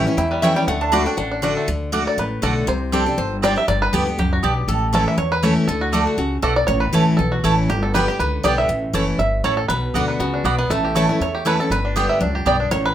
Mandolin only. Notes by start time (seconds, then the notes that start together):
0.43 A3 E4 C#5 G5
0.92 A3 F#4 D5 F#5
1.42 A3 F#4 D5 F#5
1.92 A3 F#4 D5 F#5
2.42 A3 F#4 D5 F#5
2.92 C4 G4 D5 G5
3.42 C4 G4 D5 G5
3.93 B3 G4 D5 A5
4.43 B3 G4 D5 A5
4.93 A3 E4 C#5 A5
5.43 A3 E4 C#5 A5
5.92 A3 F#4 D5 F#5
6.43 A3 F#4 D5 F#5
6.93 A3 E4 C#5 A5
7.44 A3 E4 C#5 A5
7.94 B3 G4 D5 G5
8.44 B3 G4 D5 G5
8.94 A3 E4 C#5 A5
9.44 A3 E4 C#5 A5
9.94 B3 F#4 D5 F#5
10.45 B3 F#4 D5 F#5
10.95 A3 E4 C#5 A5
11.45 A3 E4 C#5 A5
11.96 B3 G4 D5 G5
12.46 B3 G4 D5 G5